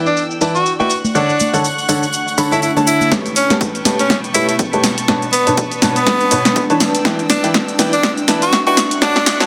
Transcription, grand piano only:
0.41 E3 E4 B4 D5 A5
0.80 E4 B4 D5 G5
1.15 D3 D4 A4 C#5 F#5
1.53 D3 D4 A4 C#5 F#5
1.89 D3 D4 A4 C#5 F#5
2.38 D3 D4 A4 C#5 B5
2.52 D3 D4 A4 C#5 A5
2.77 D3 D4 A4 C#5 A5
3.12 A3 G4 B4 C#5
3.50 A3 G4 B4 C#5 A5
3.85 A3 G4 B4 C#5 A5
4.35 A3 G4 B4 C#5 B5
4.73 A3 G4 B4 C#5 A5
5.08 B2 D4 B4 C#5 A5
5.47 B2 D4 B4 C#5 A5
5.82 B2 D4 B4 C#5 A5
6.31 B2 D4 B4 C#5 B5
6.70 E3 D4 B4 C#5 A5
7.05 E3 E4 B4 D5 G5
7.44 E3 E4 B4 D5 G5
7.79 E3 E4 B4 D5 G5
8.28 E3 E4 B4 D5 A5
8.67 E4 B4 D5 G5
9.02 D3 F#4 C#5 D5 A5
9.40 D3 F#4 C#5 D5 A5

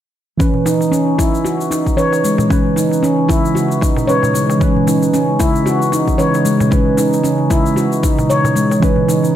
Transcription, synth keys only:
0.37 E3 C#4 B4
1.96 E3 C#4 B4
2.48 E3 C#4 B4
4.07 E3 C#4 B4
4.59 E3 C#4 B4
6.18 E3 C#4 B4
6.70 E3 C#4 B4
8.80 E3 C#4
8.84 B4

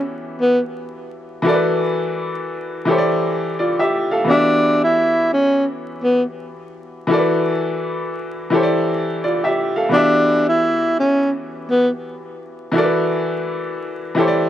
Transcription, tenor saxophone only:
0.41 B3
4.29 D4
4.84 E4
5.33 C#4
6.04 B3
9.93 D4
10.49 E4
10.99 C#4
11.70 B3

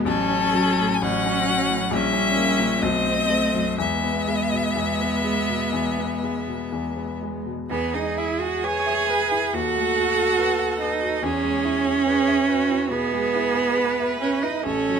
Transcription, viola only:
0.07 C#4
1.02 C#4
1.93 C#4
2.83 C4
3.79 B3
7.71 G#4
8.64 C#5
9.10 B4
9.54 A4
11.23 G#4
12.08 G#4
12.49 F#4
12.92 G#4
13.78 B4
14.65 A4

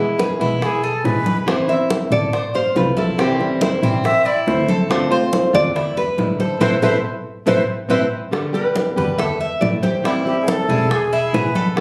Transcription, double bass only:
Already playing: E2
0.41 B1
1.04 A1
2.11 A1
2.76 C2
3.82 A1
4.47 D2
5.54 E2
6.18 A1
6.61 A1
6.83 A1
7.47 A1
7.90 A1
8.97 E2
9.62 A1
10.69 E1
11.33 A1

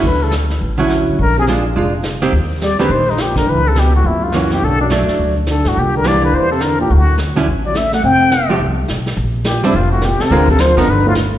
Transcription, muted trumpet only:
0.07 B4
0.23 A4
1.23 A#4
1.39 G#4
2.64 D5
2.80 B4
2.92 C5
3.10 D#4
3.21 G4
3.38 A#4
3.49 B4
3.67 A4
3.79 G4
3.96 F#4
4.07 E4
4.24 F4
4.36 F#4
4.53 G4
4.64 A4
4.81 D4
5.51 A4
5.68 F#4
5.79 G4
5.97 A#4
6.07 D5
6.25 B4
6.35 C5
6.52 A4
6.63 A#4
6.81 G4
6.91 F#4
7.66 D5
7.77 E5
7.94 F#5
8.05 G5
9.47 G4
9.65 E4
9.76 F4
9.92 F#4
10.04 G4
10.21 A4
10.32 A#4
10.51 A4
10.60 C5
10.78 A#4
10.90 B4
11.08 F4

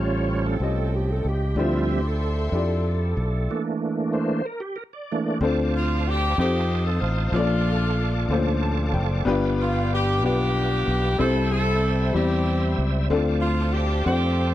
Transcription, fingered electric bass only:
Already playing: A1
0.60 C2
1.25 C#2
1.56 D2
2.52 F2
3.17 B1
5.41 D2
6.38 F2
7.02 A1
7.32 A#1
8.29 D2
8.94 F#1
9.26 G1
10.23 B1
10.88 B1
11.20 C2
12.14 E2
12.78 C#2
13.10 D2
14.06 F2

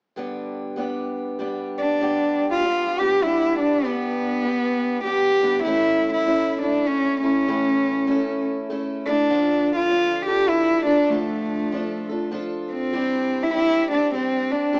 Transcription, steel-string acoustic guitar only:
0.16 G2 D3 G3 B3 D4 G4
0.76 G3 B3 D4 G4
1.39 G3 B3 D4 G4
2.01 G2 D3 G3 B3 D4 G4
2.61 G3 B3 D4 G4
2.98 G3 B3 D4 G4
3.23 G3 B3 D4 G4
3.84 G2 D3 G3 B3 D4 G4
4.43 G3 B3 D4 G4
5.04 G3 B3 D4 G4
5.41 G3 B3 D4 G4
5.65 A2 E3 A3 C#4 E4 A4
6.25 A3 C#4 E4 A4
6.61 A3 E4 A4
6.85 A3 C#4 E4 A4
7.22 A3 C#4 E4 A4
7.48 A2 E3 A3 C#4 E4 A4
8.07 A3 C#4 E4 A4
8.70 A3 C#4 E4 A4
9.06 A3 E4 A4
9.30 D3 F3 D4 F4 A4
9.90 F3 D4 F4 A4
10.27 D4 F4 A4
10.49 F3 D4 A4
10.86 F4 A4
10.90 D4
11.11 D3 F3 D4 F4 A4
11.72 F3 D4 F4 A4
12.09 D4 F4 A4
12.31 F3 D4 F4 A4
12.93 E3 G3 C4 D4 G4
13.53 G3 C4 D4 G4
13.91 C4 D4 G4
14.13 G3 C4 D4 G4
14.50 C4 D4 G4
14.73 E3 G3 C4 D4 G4

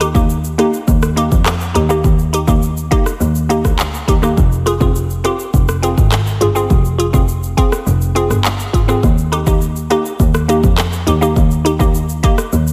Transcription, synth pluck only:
0.00 D#4 G4
0.15 A#3 D#4 G4
0.58 A#3 D#4 G4
1.16 A#3 D#4 G4
1.74 D#4 G4
1.89 A#3 D#4 G4
2.33 D#4 G4
2.48 A#3 D#4 G4
2.91 A#3 D#4 G4
3.49 A#3 D#4 G4
4.08 D#4 G4
4.22 A#3 D#4 G4
4.66 F4 G#4
4.80 C4 F4 G#4
5.24 C4 F4 G4
5.83 C4 F4 G#4
6.41 F4 G#4
6.55 C4 F4 G#4
6.99 F4 G#4
7.13 C4 F4 G#4
7.57 C4 F4 G#4
8.15 C4 F4 G#4
8.73 F4 G#4
8.88 C4 F4 G#4
9.32 D#4 G4
9.47 A#3 D#4 G4
9.90 A#3 D#4 G4
10.48 A#3 D#4 G4
11.07 D#4 G4
11.21 A#3 D#4 G4
11.65 D#4 G4
11.79 A#3 D#4 G4
12.23 A#3 D#4 G4

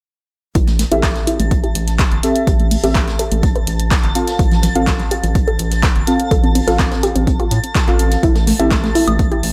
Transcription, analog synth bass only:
0.55 A1
0.92 A1
1.40 A1
1.75 A1
2.12 G1
2.47 A1
2.84 A1
3.32 A1
3.67 A1
4.04 G1
4.39 A1
4.76 A1
5.24 A1
5.59 A1
5.96 G1
6.31 A1
6.68 A1
7.16 A1
7.51 A2
7.88 A1
8.23 A1
8.60 A1
9.08 A1
9.43 A1

